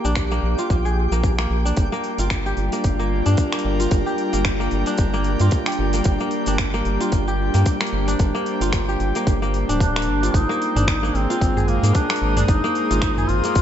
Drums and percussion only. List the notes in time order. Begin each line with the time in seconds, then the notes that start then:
0.05 shaker
0.16 finger snap, kick, shaker
0.31 shaker
0.58 shaker
0.70 kick, shaker
0.86 shaker
1.12 shaker
1.24 kick, shaker
1.39 finger snap, shaker
1.66 shaker
1.77 kick, open hi-hat, shaker
1.93 shaker
2.04 open hi-hat
2.18 open hi-hat, shaker
2.30 finger snap, kick, open hi-hat, shaker
2.46 shaker
2.57 open hi-hat
2.72 open hi-hat, shaker
2.84 kick, open hi-hat, shaker
3.00 shaker
3.26 open hi-hat, shaker
3.37 kick, open hi-hat, shaker
3.52 finger snap, open hi-hat, shaker
3.59 open hi-hat
3.80 open hi-hat, shaker
3.91 kick, open hi-hat, shaker
4.07 shaker
4.18 open hi-hat
4.33 open hi-hat, shaker
4.45 finger snap, kick, open hi-hat, shaker
4.61 shaker
4.71 open hi-hat
4.86 open hi-hat, shaker
4.98 kick, open hi-hat, shaker
5.14 shaker
5.24 open hi-hat
5.40 open hi-hat, shaker
5.51 kick, open hi-hat, shaker
5.66 finger snap, open hi-hat, shaker
5.72 open hi-hat
5.93 open hi-hat, shaker
6.04 kick, open hi-hat, shaker
6.20 shaker
6.31 open hi-hat
6.46 open hi-hat, shaker
6.58 finger snap, kick, open hi-hat, shaker
6.74 shaker
6.85 open hi-hat
7.01 open hi-hat, shaker
7.12 kick, open hi-hat, shaker
7.28 shaker
7.54 open hi-hat, shaker
7.66 kick, open hi-hat, shaker
7.81 finger snap, open hi-hat, shaker
7.87 open hi-hat
8.08 open hi-hat, shaker
8.19 kick, open hi-hat, shaker
8.36 shaker
8.46 open hi-hat
8.61 open hi-hat, shaker
8.73 finger snap, kick, open hi-hat, shaker
8.89 shaker
9.00 open hi-hat
9.15 open hi-hat, shaker
9.27 kick, open hi-hat, shaker
9.43 shaker
9.54 open hi-hat
9.69 open hi-hat, shaker
9.80 kick, open hi-hat, shaker
9.96 finger snap, open hi-hat, shaker
10.02 open hi-hat
10.23 open hi-hat, shaker
10.34 kick, open hi-hat, shaker
10.51 shaker
10.62 open hi-hat
10.77 mid tom, open hi-hat, shaker
10.88 finger snap, kick, open hi-hat, shaker
11.04 shaker
11.15 open hi-hat
11.30 open hi-hat, shaker
11.41 kick, open hi-hat, shaker
11.57 mid tom, shaker
11.68 open hi-hat
11.83 open hi-hat, shaker
11.95 kick, open hi-hat, shaker
12.10 finger snap, open hi-hat, shaker
12.16 open hi-hat
12.37 mid tom, open hi-hat, shaker
12.48 kick, open hi-hat, shaker
12.65 shaker
12.75 open hi-hat
12.91 open hi-hat, shaker
13.02 finger snap, kick, open hi-hat, shaker
13.17 mid tom, shaker
13.29 open hi-hat
13.44 open hi-hat, shaker
13.55 kick, open hi-hat, shaker